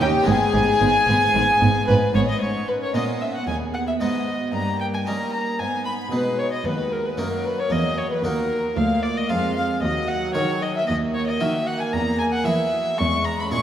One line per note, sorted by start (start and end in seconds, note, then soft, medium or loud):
0.00 0.24 D#2 medium
0.00 0.08 D#2 medium
0.00 0.24 C#4 medium
0.00 0.09 C#4 medium
0.00 0.23 D#4 medium
0.00 0.27 G4 medium
0.00 0.26 G5 loud
0.00 0.09 G5 medium
0.22 2.35 G#3 medium
0.22 2.36 B3 medium
0.22 2.36 D#4 medium
0.26 0.35 G#1 medium
0.26 0.50 G#2 medium
0.26 0.35 G#2 medium
0.26 0.36 B3 medium
0.26 1.88 G#4 medium
0.26 2.11 G#5 loud
0.26 1.85 G#5 loud
0.53 0.63 G#1 medium
0.53 0.78 G#2 medium
0.53 0.61 G#2 medium
0.53 0.62 B3 medium
0.80 0.89 G#1 medium
0.80 1.04 G#2 medium
0.80 0.88 G#2 medium
0.80 0.90 B3 medium
1.07 1.16 G#1 medium
1.07 1.15 G#2 medium
1.07 1.31 G#2 medium
1.07 1.16 B3 medium
1.34 1.43 G#1 medium
1.34 1.42 G#2 medium
1.34 1.58 G#2 medium
1.34 1.43 B3 medium
1.60 1.69 G#1 medium
1.60 1.68 G#2 medium
1.60 1.85 G#2 medium
1.60 1.69 B3 medium
1.87 1.97 G#1 medium
1.87 1.96 G#2 medium
1.87 2.12 G#2 medium
1.87 1.97 B3 medium
1.87 1.95 B4 medium
1.87 2.13 B4 medium
2.14 2.23 G#1 medium
2.14 2.22 G#2 medium
2.14 2.39 G#2 medium
2.14 2.22 B3 medium
2.14 2.27 C#5 medium
2.14 2.20 C#5 medium
2.27 2.41 D#5 medium
2.41 2.90 G#2 medium
2.41 2.91 G#2 soft
2.41 3.44 C#4 soft
2.41 3.44 A#4 soft
2.41 2.49 C#5 medium
2.41 2.70 C#5 medium
2.68 2.73 B4 medium
2.68 2.81 B4 medium
2.82 2.95 C#5 soft
2.82 2.95 C#5 medium
2.94 3.43 A#2 medium
2.94 3.44 A#2 soft
2.94 3.33 G#3 soft
2.94 3.33 B3 soft
2.94 3.33 D#4 soft
2.94 3.21 D#5 soft
2.94 3.03 D#5 medium
3.21 3.27 E5 medium
3.21 3.35 E5 medium
3.35 3.48 F#5 medium
3.35 3.47 F#5 medium
3.47 3.97 D#2 medium
3.47 3.97 D#2 soft
3.47 4.54 B3 soft
3.47 3.99 G#4 soft
3.47 3.55 G#5 medium
3.47 3.56 G#5 medium
3.74 3.79 F#5 medium
3.74 3.87 F#5 medium
3.88 3.93 E5 medium
3.88 3.93 E5 soft
4.00 4.50 G#2 medium
4.00 4.50 G#2 soft
4.00 4.39 G#3 soft
4.00 4.39 B3 soft
4.00 4.39 D#4 soft
4.00 4.27 G#4 soft
4.00 4.53 D#5 medium
4.28 4.54 F#4 soft
4.53 5.03 G2 soft
4.53 5.03 G2 medium
4.53 5.06 A#3 soft
4.53 5.07 G4 soft
4.53 4.80 A#5 medium
4.53 4.81 A#5 medium
4.80 4.86 G5 medium
4.94 4.99 G#5 medium
4.94 5.07 G#5 medium
5.06 5.55 G3 medium
5.06 5.56 G3 soft
5.06 5.59 A#3 soft
5.06 5.45 C#4 soft
5.06 5.59 D#4 soft
5.06 5.45 D#4 soft
5.06 5.32 A#5 medium
5.06 5.31 A#5 medium
5.33 5.41 A#5 medium
5.33 5.61 A#5 medium
5.59 6.08 G#2 medium
5.59 6.08 G#2 soft
5.59 6.12 B3 soft
5.59 6.64 D#4 soft
5.59 5.84 G#5 medium
5.59 5.86 G#5 medium
5.85 5.93 B5 medium
5.85 6.12 B5 medium
6.12 6.61 B2 medium
6.12 6.61 B2 soft
6.12 6.64 G#3 soft
6.12 6.50 D#4 soft
6.12 6.39 B4 medium
6.12 6.40 B4 medium
6.38 6.51 C#5 medium
6.38 6.52 C#5 medium
6.52 6.67 D#5 medium
6.52 6.57 D#5 soft
6.65 7.14 D#2 medium
6.65 7.14 D#2 soft
6.65 7.17 G#3 soft
6.65 7.16 F#4 soft
6.65 6.94 B4 medium
6.65 6.91 B4 medium
6.92 7.05 A#4 soft
6.92 7.08 A#4 medium
7.06 7.19 B4 medium
7.06 7.20 B4 medium
7.17 7.67 F#2 soft
7.17 7.67 F#2 medium
7.17 8.23 F#3 soft
7.17 7.56 A#3 soft
7.17 7.56 D#4 soft
7.17 7.70 F#4 soft
7.17 7.57 F#4 soft
7.17 7.45 A#4 medium
7.17 7.47 A#4 medium
7.45 7.58 B4 medium
7.45 7.61 B4 medium
7.58 7.71 C#5 medium
7.58 7.73 C#5 medium
7.70 8.19 E2 soft
7.70 8.20 E2 medium
7.70 8.23 A#3 soft
7.70 8.24 G#4 soft
7.70 8.00 D#5 medium
7.70 7.98 D#5 medium
7.98 8.11 C#5 medium
8.10 8.23 B4 medium
8.10 8.26 B4 medium
8.23 8.73 D#2 medium
8.23 8.73 D#2 soft
8.23 8.75 A#3 soft
8.23 8.62 A#3 soft
8.23 8.62 D#4 soft
8.23 8.76 F#4 soft
8.23 8.63 F#4 soft
8.23 8.76 A#4 medium
8.23 8.79 A#4 medium
8.76 9.26 D2 medium
8.76 9.26 D2 soft
8.76 9.28 A#3 medium
8.76 9.28 F4 medium
8.76 9.03 F5 medium
8.76 9.05 F5 medium
9.02 9.15 D5 medium
9.02 9.19 D5 medium
9.16 9.29 D#5 medium
9.16 9.32 D#5 medium
9.29 9.78 F2 soft
9.29 9.79 F2 medium
9.29 9.82 G#3 medium
9.29 9.81 F4 medium
9.29 9.67 F4 soft
9.29 9.68 A#4 soft
9.29 9.55 F5 medium
9.56 9.82 F5 medium
9.56 9.64 F5 medium
9.82 10.31 D#2 soft
9.82 10.31 D#2 medium
9.82 10.88 F#3 medium
9.82 10.36 F#4 soft
9.82 10.10 D#5 medium
9.82 10.09 D#5 medium
10.08 10.34 F#5 medium
10.08 10.35 F#5 medium
10.34 10.84 D#3 soft
10.34 10.84 D#3 medium
10.34 10.73 F#4 soft
10.34 10.88 G#4 medium
10.34 10.73 A#4 soft
10.34 10.61 C#5 medium
10.34 10.64 C#5 medium
10.62 10.75 D#5 medium
10.76 10.88 E5 medium
10.76 10.87 E5 medium
10.87 11.36 D#2 soft
10.87 11.37 D#2 medium
10.87 12.99 A#3 medium
10.87 11.39 F#4 medium
10.87 10.95 D#5 medium
10.87 10.97 D#5 medium
11.14 11.27 C#5 medium
11.14 11.28 C#5 medium
11.27 11.42 D#5 medium
11.27 11.41 D#5 medium
11.40 11.90 D#3 medium
11.40 11.89 D#3 soft
11.40 11.92 F#4 medium
11.40 11.78 F#4 soft
11.40 11.79 A#4 soft
11.40 11.68 E5 medium
11.67 11.82 F#5 medium
11.67 11.81 F#5 medium
11.80 11.94 G#5 medium
11.92 12.42 E2 medium
11.92 12.45 G#4 medium
11.92 12.19 A#5 medium
11.92 12.20 A#5 medium
12.19 12.25 G#5 medium
12.19 12.33 G#5 medium
12.32 12.46 F#5 medium
12.45 12.95 E3 soft
12.45 12.95 E3 medium
12.45 12.84 E4 soft
12.45 12.72 E4 medium
12.45 12.84 G#4 soft
12.45 13.00 E5 medium
12.45 12.99 E5 medium
12.71 12.98 F#4 medium
12.98 13.48 E2 medium
12.98 13.50 G#3 medium
12.98 13.50 G#4 medium
12.98 13.26 C#6 medium
12.98 13.25 C#6 medium
13.25 13.42 A#5 medium
13.25 13.39 A#5 medium
13.39 13.44 B5 medium
13.39 13.52 B5 medium
13.51 13.62 A#2 medium
13.51 13.62 A#2 soft
13.51 13.62 G#3 soft
13.51 13.62 C#4 medium
13.51 13.62 E4 soft
13.51 13.62 G#4 soft
13.51 13.62 A#4 medium
13.51 13.60 C#6 medium
13.51 13.62 C#6 medium